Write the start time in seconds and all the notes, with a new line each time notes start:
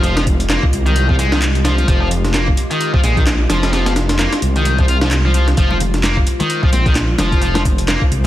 Already playing: F1 G#3 F4 G4
0.03 F3, closed hi-hat
0.17 F3, snare, closed hi-hat
0.27 kick, closed hi-hat
0.40 closed hi-hat
0.50 A#3, snare, clap, closed hi-hat
0.63 kick
0.73 C2, closed hi-hat
0.86 D#3, closed hi-hat
0.96 closed hi-hat
1.09 F3, kick
1.19 G#3, closed hi-hat
1.32 D#3, snare, closed hi-hat
1.42 clap, closed hi-hat
1.55 closed hi-hat
1.65 F3, snare, closed hi-hat
1.78 closed hi-hat
1.88 F1 F3, kick, closed hi-hat
2.01 F3
2.11 closed hi-hat
2.25 snare, closed hi-hat
2.34 A#3, snare, clap, closed hi-hat
2.48 kick
2.57 closed hi-hat
2.71 D#3, closed hi-hat
2.81 closed hi-hat
2.94 F3, kick
3.03 A#1 G#3, closed hi-hat
3.17 D#3, kick, closed hi-hat
3.27 snare, clap, closed hi-hat
3.49 F1 F3, snare, closed hi-hat
3.63 snare, closed hi-hat
3.73 F3, snare, closed hi-hat
3.86 F3, snare, closed hi-hat
3.96 snare, closed hi-hat
4.09 snare, closed hi-hat
4.19 A#3, snare, clap, closed hi-hat
4.32 snare, closed hi-hat
4.42 C2, closed hi-hat
4.56 D#3, closed hi-hat
4.65 closed hi-hat
4.78 F3, kick, closed hi-hat
4.88 C2 F4, closed hi-hat
5.01 F3, snare, closed hi-hat
5.11 snare, clap, closed hi-hat
5.25 F3
5.34 F3, closed hi-hat
5.48 snare, closed hi-hat
5.57 F1 F3 C5, kick, closed hi-hat
5.71 F3, high conga
5.80 closed hi-hat, low conga
5.94 snare, closed hi-hat
6.03 A#3, snare, clap, closed hi-hat, high conga
6.17 kick
6.27 closed hi-hat
6.40 D#3, closed hi-hat, high conga, low conga
6.50 closed hi-hat
6.63 F3, kick
6.72 A#1 C4, closed hi-hat, high conga
6.86 D#3, kick, closed hi-hat
6.96 snare, clap, closed hi-hat
7.18 F1 F3, snare, closed hi-hat, high conga, low conga
7.32 kick, closed hi-hat
7.42 F3, closed hi-hat
7.55 F3, snare, closed hi-hat, high conga
7.65 kick, closed hi-hat, low conga
7.78 closed hi-hat
7.88 A#3, snare, clap, closed hi-hat, high conga
8.01 kick
8.11 C2, closed hi-hat